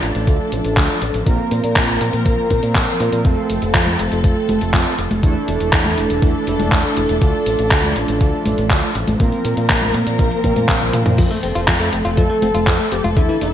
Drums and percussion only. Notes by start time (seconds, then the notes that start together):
0.03 closed hi-hat
0.15 closed hi-hat
0.27 kick, closed hi-hat
0.52 closed hi-hat
0.64 closed hi-hat
0.77 kick, clap, closed hi-hat
1.02 closed hi-hat
1.14 closed hi-hat
1.26 kick, closed hi-hat
1.51 closed hi-hat
1.64 closed hi-hat
1.76 kick, clap, closed hi-hat
2.01 closed hi-hat
2.13 closed hi-hat
2.26 kick, closed hi-hat
2.50 kick, closed hi-hat
2.63 closed hi-hat
2.75 kick, clap, closed hi-hat
3.00 closed hi-hat
3.12 closed hi-hat
3.25 kick, closed hi-hat
3.50 closed hi-hat
3.62 closed hi-hat
3.74 kick, clap, closed hi-hat
3.87 high conga
3.99 closed hi-hat
4.12 closed hi-hat
4.24 kick, closed hi-hat
4.49 closed hi-hat, high conga
4.61 closed hi-hat
4.74 kick, clap, closed hi-hat
4.98 closed hi-hat
5.11 closed hi-hat, high conga
5.23 kick, closed hi-hat
5.48 closed hi-hat
5.60 closed hi-hat
5.73 kick, clap, closed hi-hat
5.85 high conga
5.98 closed hi-hat
6.10 closed hi-hat
6.22 kick, closed hi-hat
6.47 closed hi-hat
6.60 closed hi-hat, high conga
6.72 kick, clap, closed hi-hat
6.97 closed hi-hat
7.09 closed hi-hat
7.22 kick, closed hi-hat
7.46 closed hi-hat
7.59 closed hi-hat
7.71 kick, clap, closed hi-hat
7.83 high conga
7.96 closed hi-hat
8.08 closed hi-hat
8.21 kick, closed hi-hat
8.46 closed hi-hat, high conga
8.58 closed hi-hat
8.70 kick, clap, closed hi-hat
8.95 closed hi-hat
9.08 closed hi-hat, high conga
9.20 kick, closed hi-hat
9.32 closed hi-hat
9.45 closed hi-hat
9.57 closed hi-hat
9.70 kick, clap, closed hi-hat
9.82 closed hi-hat, high conga
9.94 closed hi-hat
10.07 closed hi-hat
10.19 kick, closed hi-hat
10.31 closed hi-hat
10.44 kick, closed hi-hat
10.56 closed hi-hat, high conga
10.69 kick, clap, closed hi-hat
10.81 high tom
10.93 closed hi-hat, mid tom
11.06 closed hi-hat, mid tom
11.18 kick, closed hi-hat, crash
11.43 closed hi-hat
11.55 closed hi-hat
11.68 kick, clap, closed hi-hat
11.80 high conga
11.93 closed hi-hat
12.05 closed hi-hat
12.17 kick, closed hi-hat
12.42 closed hi-hat, high conga
12.55 closed hi-hat
12.67 kick, clap, closed hi-hat
12.92 closed hi-hat
13.04 closed hi-hat, high conga
13.17 kick, closed hi-hat
13.41 closed hi-hat